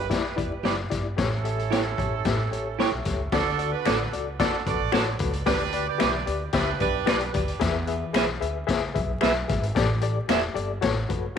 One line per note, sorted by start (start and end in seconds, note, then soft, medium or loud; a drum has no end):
0.00 0.87 E4 medium
0.00 0.87 G4 medium
0.00 0.86 B4 medium
0.10 0.26 E4 loud
0.10 0.26 G4 medium
0.10 0.26 D5 loud
0.10 kick medium
0.10 snare loud
0.10 closed hi-hat medium
0.23 muted upright bass stroke soft
0.36 0.57 E1 medium
0.36 0.52 E4 medium
0.36 0.53 G4 medium
0.36 0.53 D5 medium
0.36 kick medium
0.36 closed hi-hat medium
0.63 0.83 F#1 medium
0.63 0.79 E4 medium
0.63 0.73 G4 medium
0.63 0.80 G4 medium
0.63 0.74 B4 medium
0.63 0.80 D5 medium
0.63 0.74 D5 medium
0.63 snare loud
0.63 closed hi-hat medium
0.90 1.11 G1 medium
0.90 1.06 E4 medium
0.90 1.06 G4 medium
0.90 1.06 D5 medium
0.90 kick medium
0.90 snare soft
0.90 closed hi-hat medium
1.17 1.94 A1 loud
1.17 1.94 A2 medium
1.17 3.02 C#4 medium
1.17 3.02 E4 medium
1.17 1.33 G4 loud
1.17 1.33 A4 medium
1.17 3.02 A4 medium
1.17 1.33 C#5 loud
1.17 kick loud
1.17 snare loud
1.17 closed hi-hat medium
1.44 1.60 G4 medium
1.44 1.60 A4 medium
1.44 1.61 E5 medium
1.44 closed hi-hat medium
1.59 closed hi-hat soft
1.71 1.80 E4 medium
1.71 1.87 G4 medium
1.71 1.81 G4 medium
1.71 1.87 A4 medium
1.71 1.81 C#5 medium
1.71 1.87 C#5 medium
1.71 snare loud
1.71 closed hi-hat medium
1.98 2.18 A1 medium
1.98 2.14 G4 medium
1.98 2.14 A4 medium
1.98 2.14 C#5 medium
1.98 kick medium
1.98 closed hi-hat medium
2.25 2.45 A2 loud
2.25 2.41 G4 loud
2.25 2.41 A4 medium
2.25 2.41 E5 loud
2.25 kick medium
2.25 snare loud
2.25 closed hi-hat medium
2.51 2.81 A1 medium
2.51 2.67 G4 medium
2.51 2.67 A4 medium
2.51 2.68 C#5 medium
2.51 closed hi-hat medium
2.78 2.88 E4 medium
2.78 2.94 G4 medium
2.78 2.88 G4 medium
2.78 2.95 A4 medium
2.78 2.95 C#5 medium
2.78 2.89 C#5 medium
2.78 2.91 B5 medium
2.78 snare loud
2.78 closed hi-hat medium
2.92 3.02 B1 medium
2.92 3.30 E5 medium
3.05 3.26 C#2 medium
3.05 3.21 G4 medium
3.05 3.21 A4 medium
3.05 3.21 C#5 medium
3.05 kick medium
3.05 snare soft
3.05 closed hi-hat medium
3.32 3.72 D2 loud
3.32 4.09 D3 medium
3.32 3.70 D4 loud
3.32 3.48 F#4 loud
3.32 3.70 F#4 loud
3.32 3.70 A4 loud
3.32 3.48 A4 loud
3.32 3.48 D5 loud
3.32 kick loud
3.32 snare loud
3.32 closed hi-hat medium
3.58 3.74 F#4 medium
3.58 3.74 A4 medium
3.58 3.75 D5 medium
3.58 closed hi-hat medium
3.72 4.10 D4 medium
3.72 4.10 F#4 medium
3.72 4.10 B4 medium
3.85 4.06 A1 medium
3.85 4.01 F#4 medium
3.85 3.95 F#4 medium
3.85 4.01 A4 medium
3.85 3.96 A4 medium
3.85 4.02 D5 medium
3.85 3.96 D5 medium
3.85 finger snap medium
3.85 snare loud
3.85 closed hi-hat medium
4.12 4.43 C#2 medium
4.12 4.28 F#4 medium
4.12 4.28 A4 medium
4.12 4.28 D5 medium
4.12 closed hi-hat medium
4.39 4.61 D4 medium
4.39 4.55 F#4 loud
4.39 4.61 F#4 medium
4.39 4.61 A4 medium
4.39 4.55 A4 loud
4.39 4.55 D5 loud
4.39 kick medium
4.39 snare loud
4.39 closed hi-hat loud
4.66 4.76 B1 medium
4.66 4.82 F#4 medium
4.66 5.17 F#4 medium
4.66 5.17 A4 medium
4.66 4.82 A4 medium
4.66 4.82 B4 medium
4.66 5.17 D5 medium
4.66 kick medium
4.66 closed hi-hat medium
4.80 4.90 A1 medium
4.92 5.13 A1 medium
4.92 5.08 F#4 loud
4.92 5.02 F#4 medium
4.92 5.08 A4 loud
4.92 5.03 A4 medium
4.92 5.09 C#5 loud
4.92 5.03 D5 medium
4.92 finger snap loud
4.92 snare loud
4.92 closed hi-hat medium
5.19 5.40 C#2 medium
5.19 5.35 F#4 medium
5.19 5.35 A4 medium
5.19 5.35 B4 medium
5.19 kick medium
5.19 closed hi-hat medium
5.33 closed hi-hat medium
5.46 5.86 D2 loud
5.46 6.23 D3 medium
5.46 5.84 D4 loud
5.46 5.62 G4 loud
5.46 5.84 G4 loud
5.46 5.84 B4 loud
5.46 5.62 B4 loud
5.46 5.62 D5 loud
5.46 kick loud
5.46 snare loud
5.46 closed hi-hat medium
5.72 5.89 G4 medium
5.72 5.89 B4 medium
5.72 5.89 D5 loud
5.72 closed hi-hat medium
5.87 6.25 G4 medium
5.87 6.25 B4 medium
5.87 6.25 D5 medium
5.98 6.21 B1 medium
5.98 6.15 G4 medium
5.98 6.09 G4 medium
5.98 6.15 B4 medium
5.98 6.10 B4 medium
5.98 6.10 D5 medium
5.98 6.15 E5 medium
5.98 finger snap medium
5.98 snare loud
5.98 closed hi-hat medium
6.26 6.47 D2 medium
6.26 6.42 G4 medium
6.26 6.42 B4 medium
6.26 6.42 D5 medium
6.26 closed hi-hat medium
6.53 6.73 C#2 medium
6.53 6.75 D4 medium
6.53 6.69 G4 loud
6.53 6.75 G4 medium
6.53 6.75 B4 loud
6.53 6.69 B4 medium
6.53 6.70 E5 loud
6.53 kick medium
6.53 snare loud
6.53 closed hi-hat medium
6.80 7.00 B1 medium
6.80 7.31 D4 medium
6.80 6.96 G4 medium
6.80 7.31 G4 medium
6.80 6.96 B4 medium
6.80 7.31 B4 medium
6.80 6.96 D5 medium
6.80 kick medium
6.80 closed hi-hat medium
7.06 7.27 B1 medium
7.06 7.22 G4 loud
7.06 7.16 G4 medium
7.06 7.23 B4 medium
7.06 7.17 B4 medium
7.06 7.23 D5 loud
7.06 7.17 D5 loud
7.06 finger snap loud
7.06 snare loud
7.06 closed hi-hat medium
7.20 closed hi-hat medium
7.33 7.54 D2 medium
7.33 7.49 G4 medium
7.33 7.50 B4 medium
7.33 7.50 D5 medium
7.33 kick medium
7.33 closed hi-hat medium
7.48 closed hi-hat medium
7.60 8.01 E2 loud
7.60 8.37 E3 medium
7.60 7.76 G#4 loud
7.60 7.76 B4 loud
7.60 7.77 E5 loud
7.60 kick loud
7.60 snare loud
7.60 closed hi-hat medium
7.87 8.03 G#4 medium
7.87 8.03 B4 medium
7.87 8.04 E5 medium
7.87 closed hi-hat medium
8.13 8.34 B1 medium
8.13 8.29 G#4 medium
8.13 8.24 G#4 medium
8.13 8.30 B4 medium
8.13 8.24 B4 medium
8.13 8.30 E5 medium
8.13 8.25 E5 medium
8.13 finger snap medium
8.13 snare loud
8.13 closed hi-hat medium
8.40 8.61 D2 medium
8.40 8.57 G#4 medium
8.40 8.57 B4 medium
8.40 8.57 E5 medium
8.40 closed hi-hat medium
8.67 8.88 C#2 medium
8.67 8.83 G#4 loud
8.67 8.83 B4 loud
8.67 8.84 E5 loud
8.67 kick medium
8.67 snare loud
8.67 closed hi-hat medium
8.94 9.16 B1 medium
8.94 9.10 G#4 medium
8.94 9.10 B4 medium
8.94 9.11 E5 medium
8.94 kick medium
8.94 closed hi-hat medium
9.21 9.42 B1 medium
9.21 9.37 G#4 loud
9.21 9.31 G#4 medium
9.21 9.37 B4 loud
9.21 9.31 B4 medium
9.21 9.37 E5 loud
9.21 9.32 E5 medium
9.21 finger snap loud
9.21 snare loud
9.21 closed hi-hat medium
9.48 9.69 G#1 medium
9.48 9.64 G#4 medium
9.48 9.65 B4 medium
9.48 9.65 E5 medium
9.48 kick medium
9.48 snare soft
9.48 closed hi-hat medium
9.63 closed hi-hat medium
9.75 10.16 A1 loud
9.75 10.52 A2 medium
9.75 9.91 G4 loud
9.75 9.91 A4 loud
9.75 9.91 D5 loud
9.75 kick loud
9.75 snare loud
9.75 closed hi-hat medium
10.01 10.18 G4 medium
10.01 10.18 A4 medium
10.01 10.18 D5 medium
10.01 closed hi-hat medium
10.28 10.49 E1 medium
10.28 10.44 G4 medium
10.28 10.39 G4 medium
10.28 10.45 A4 medium
10.28 10.45 D5 medium
10.28 10.39 D5 medium
10.28 10.39 E5 loud
10.28 finger snap medium
10.28 snare loud
10.28 closed hi-hat medium
10.54 10.76 G1 medium
10.54 10.71 G4 medium
10.54 10.71 A4 medium
10.54 10.71 D5 medium
10.54 closed hi-hat medium
10.81 11.03 A1 loud
10.81 11.38 A2 medium
10.81 10.98 F#4 loud
10.81 10.98 A4 loud
10.81 10.98 C#5 loud
10.81 kick medium
10.81 snare loud
10.81 closed hi-hat medium
11.09 11.30 F#1 medium
11.09 11.25 F#4 medium
11.09 11.25 A4 medium
11.09 11.26 B4 medium
11.09 kick medium
11.09 closed hi-hat medium